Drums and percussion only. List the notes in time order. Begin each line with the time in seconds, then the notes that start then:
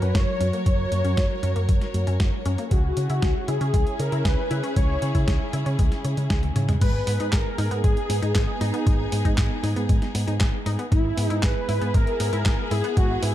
0.02 closed hi-hat
0.15 kick, snare, closed hi-hat
0.41 closed hi-hat
0.53 closed hi-hat
0.66 kick, closed hi-hat
0.92 closed hi-hat
1.05 closed hi-hat
1.17 kick, snare, closed hi-hat
1.43 closed hi-hat
1.56 closed hi-hat
1.69 kick, closed hi-hat
1.81 snare, closed hi-hat
1.94 closed hi-hat
2.07 closed hi-hat
2.20 kick, snare, closed hi-hat
2.46 closed hi-hat
2.58 closed hi-hat
2.71 kick, closed hi-hat
2.97 closed hi-hat
3.10 closed hi-hat
3.22 kick, snare, closed hi-hat
3.48 closed hi-hat
3.61 closed hi-hat
3.74 kick, closed hi-hat
3.87 closed hi-hat
4.00 closed hi-hat
4.12 closed hi-hat
4.25 kick, snare, closed hi-hat
4.51 closed hi-hat
4.64 closed hi-hat
4.76 kick, closed hi-hat
5.02 closed hi-hat
5.15 kick, closed hi-hat
5.28 kick, snare, closed hi-hat
5.53 closed hi-hat
5.66 closed hi-hat
5.79 kick, closed hi-hat
5.92 snare, closed hi-hat
6.05 closed hi-hat
6.17 closed hi-hat
6.30 kick, snare, closed hi-hat
6.43 closed hi-hat, high tom
6.56 closed hi-hat, mid tom
6.69 closed hi-hat, mid tom
6.81 kick, closed hi-hat, crash
7.07 open hi-hat
7.20 closed hi-hat
7.33 kick, snare, clap, closed hi-hat
7.58 open hi-hat
7.71 closed hi-hat
7.84 kick, closed hi-hat
7.97 closed hi-hat
8.10 open hi-hat
8.23 closed hi-hat
8.35 kick, snare, clap, closed hi-hat
8.61 open hi-hat
8.74 closed hi-hat
8.87 kick, closed hi-hat
9.12 open hi-hat
9.25 kick, closed hi-hat
9.38 kick, snare, clap, closed hi-hat
9.64 open hi-hat
9.76 closed hi-hat
9.89 kick, closed hi-hat
10.02 snare, closed hi-hat
10.15 open hi-hat
10.28 closed hi-hat
10.40 kick, snare, clap, closed hi-hat
10.66 open hi-hat
10.79 closed hi-hat
10.92 kick, closed hi-hat
11.18 open hi-hat
11.30 closed hi-hat
11.43 kick, snare, clap, closed hi-hat
11.69 open hi-hat
11.82 closed hi-hat
11.94 kick, closed hi-hat
12.07 closed hi-hat
12.20 open hi-hat
12.33 closed hi-hat
12.46 kick, snare, clap, closed hi-hat
12.71 open hi-hat
12.84 closed hi-hat
12.97 kick, closed hi-hat
13.23 open hi-hat